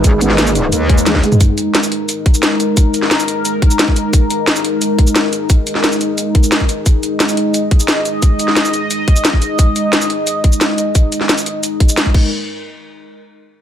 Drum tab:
CC |----------------|----------------|----------------|----------------|
HH |x-x-x-x-x-x-x-x-|x-x-x-x-x-x-x-x-|x-x-x-x-x-x-x-x-|x-x-x-x-x-x-x-x-|
SH |x-x-xxx-x--xx-xx|x-x-xx--x--xx-x-|x-x-xxx-x--xx-x-|x-x-xx--x--xx-x-|
SD |---oo-------oo--|----o-------o---|---oo-------o---|----o-------o---|
T1 |------------o---|----------------|----------------|----------------|
T2 |---------------o|----------------|----------------|----------------|
BD |o---------o--o--|o---------o-----|o---------o--o--|o---------o-----|

CC |----------------|----------------|----------------|----------------|
HH |x-x-x-x-x-x-x-x-|x-x-x-x-x-x-x-x-|x-x-x-x-x-x-x-x-|x-x-x-x-x-x-x-x-|
SH |x-x-xxx-x--xx-x-|x-x-xx--x--xx-x-|x-x-xxx-x--xx-x-|x-x-xx--x--xx-x-|
SD |---oo-------o---|----o-------o---|---oo-------o---|----o-------o---|
T1 |----------------|----------------|----------------|----------------|
T2 |----------------|----------------|----------------|----------------|
BD |o---------o--o--|o---------o-----|o---------o--o--|o---------o-----|

CC |--------------x-|----------------|
HH |x-x-x-x-x-x-x---|----------------|
SH |x-x-xxx-x--xx---|----------------|
SD |---oo-------o---|----------------|
T1 |----------------|----------------|
T2 |----------------|----------------|
BD |o---------o--oo-|----------------|